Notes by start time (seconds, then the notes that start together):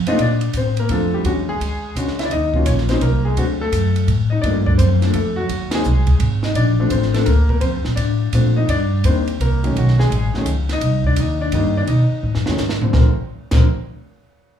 0.06 A#2 A3 C4 D4 D#4 F4 D#5, muted upright bass stroke, ride
0.18 A#2 D4 D5, kick, ride
0.41 ride
0.53 A2 C5, kick, hi-hat pedal, ride
0.58 C4
0.77 A#3 A#4, ride
0.89 F2 A3 C4 D4 F4 A4, kick, ride
1.14 G3 G4
1.24 E2 F#3 G#3 C#4 D4 F#4, kick, ride
1.49 G#3 G#4
1.60 D2, kick, ride
1.95 C#2 G#3 C#4 D4 F#4, kick, hi-hat pedal, ride
2.08 snare
2.19 E4 E5, snare, ride
2.25 D5
2.30 D#2 D#4 D#5, kick, ride
2.54 F#3 A#3 C#4 F4, kick
2.65 A#1 C#4 C#5, kick, hi-hat pedal, ride
2.78 snare
2.89 F#3 A#3 C4 C#4 D#4 C5, snare, ride
3.01 C2 A#3 A#4, kick, ride
3.25 G#3 G#4
3.36 D2 F#3 A3 C4 D4 F#4, kick, ride
3.61 A3 A4
3.72 F#2, kick, hi-hat pedal, ride
3.96 ride
4.07 A2, kick, ride
4.30 D#4 D#5
4.42 G2 F3 A3 A#3 D4 D5, kick, ride
4.66 D4 D5, kick
4.78 F#2 C4 C5, hi-hat pedal, ride
5.02 F3 A3 A#3 D4, snare, ride
5.13 F2 A3 A4, kick, ride
5.36 F#3 F#4
5.49 D#2, kick, ride
5.71 F#3 A#3 C4 D#4 G#4, snare, ride
5.76 G#3
5.84 C2, hi-hat pedal
6.07 kick, ride
6.20 G#1, ride
6.43 D#4 D#5, snare
6.55 A#1 D4 D5, kick, ride
6.79 F3 A3 C4 D4
6.90 A1 C4 C5, kick, hi-hat pedal, ride
7.02 snare
7.14 F3 A3 C4 D4 A4, snare, ride
7.26 D2 A#3 A#4, kick, ride
7.49 A#3 A#4, kick
7.61 F2 C4 C5, kick, ride
7.73 D2
7.85 A#1, snare
7.96 A2 D4 D5, kick, ride
8.32 A#2 F3 A3 C4 D4, kick, hi-hat pedal, ride
8.56 D#4 D#5
8.68 G2 D4 D5, kick, ride
9.03 D#2 D#3 G3 A#3 C4 D4 C5, kick, hi-hat pedal, ride
9.27 ride
9.40 C2 A#3 A#4, kick, ride
9.64 D#3 F#3 A3 C#4, ride
9.75 B1 F#3 F#4, kick, ride
9.88 snare
9.99 G#3 G#4, snare
10.10 A1, kick, ride
10.34 D#3 F#3 A3 C#4, muted upright bass stroke, snare
10.46 C#2, kick, hi-hat pedal, ride
10.69 D#5, snare, ride
10.73 D#4
10.81 C2, kick, ride
11.04 D4 D5, kick
11.16 D#2 D#4, kick, hi-hat pedal, ride
11.20 D#5
11.41 D4 D5
11.52 G2 D#3 G3 A#3 D4 D#4 D#5, kick, ride
11.77 D4 D5
11.82 D5
11.87 B2 D#4 D#5, kick, ride
12.10 muted upright bass stroke
12.23 A2
12.35 F#2, snare
12.46 D#2 D#3 F#3 A3 C#4, snare
12.58 G#2, snare, hi-hat pedal
12.69 snare
12.81 D3 F3 A3 C4, floor tom
12.93 A#1 D3 F3 A3 C4 A#4, kick, snare
13.51 A#1 D3 F3 A3 C4 A#4, kick, snare, crash